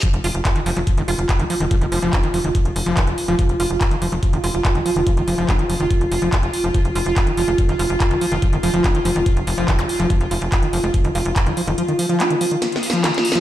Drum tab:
HH |x--x--o--x--x--x--o--x--x--x--o--x--x--x--o--x--|x--x--o--x--x--x--o--x--x--x--o--x--x--x--o--x--|x--x--o--x--x--x--o--x--x--x--o--x--x--x--o--x--|x--x--o--x--x--x--o--x--x--x--o--x--x--x--o--x--|
CP |------------x-----------------------x-----------|------------x-----------------------x-----------|------------x-----------------------x-----------|------------x-----------------------x-----------|
SD |------------------------------------------------|------------------------------------------------|------------------------------------------------|------------------------------------------------|
BD |o-----------o-----------o-----------o-----------|o-----------o-----------o-----------o-----------|o-----------o-----------o-----------o-----------|o-----------o-----------o-----------o-----------|

HH |x--x--o--x--x--x--o-----x--x--o--x--x--x--o--x--|x--x--o--x--x--x--o--x--x--x--o--x--x--x--o--x--|x--x--o--x--x--x--o--x--x--x--o--x--x--x--o--x--|x--x--o--x--x--x--o--x--x--x--o--x--x--x--o--x--|
CP |------------x-----------------------x-----------|------------x-----------------------x-----------|------------x-----------------------x-----------|------------x-----------------------x-----------|
SD |------------------------------------------------|------------------------------------------------|------------------------------------------------|------------------------o---o---o---o---o---o---|
BD |o-----------o-----------o-----------o-----------|o-----------o-----------o-----------o-----------|o-----------o-----------o-----------o-----------|------------------------------------------------|